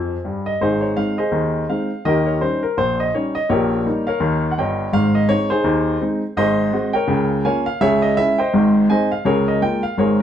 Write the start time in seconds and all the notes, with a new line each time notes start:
Already playing: F2 F3 G#4 D#5 G#5
0.25 G2 G3
0.46 D#5
0.61 G#1 G#2 D#4 G#4 C5
0.81 C#5
0.96 G#3 C4 D#4 F5
1.18 G#4 C5 D#5
1.32 D#2 D#3
1.70 G#3 C4 D#4 F5
2.05 D#2 D#3 G4 A#4 D#5
2.26 C#5
2.41 G3 C#4 D#4 C5
2.63 A#4
2.77 A#1 A#2 C5
3.00 D#5
3.15 G3 C#4 D#4 C#5
3.35 D#5
3.49 A#1 A#2 G4 A#4 C#5
3.85 G3 A#3 D#4
4.07 A#4 C#5 F5
4.20 D#2 D#3
4.51 F#5
4.58 G1 G2 C#5 D#5 G5
4.93 G#1 G#2 F5
5.15 D#5
5.29 G#3 C4 D#4 C#5
5.50 D#4 G#4 C5
5.64 D#2 D#3
6.01 G#3 C4 D#4
6.37 G#1 G#2 G#4 C5 D#5
6.73 G#3 C4 F#4
6.93 A#4 C#5 G5
7.07 C#2 C#3
7.45 A#3 C#4 F4 C#5 F5 G#5
7.66 F5
7.81 C#2 C#3 G#4 C#5 E5
8.02 D#5
8.17 G#3 C#4 E4 E5
8.38 C5 D#5 G5
8.54 G#1 G#2
8.90 G#3 C4 D#4 C5 D#5 G#5
9.12 F5
9.25 C#2 C#3 G#4 A#4 C#5
9.48 D#5
9.62 G#3 A#3 F4 G5
9.83 F5
9.98 G#1 G#2 G#4 A#4 C#5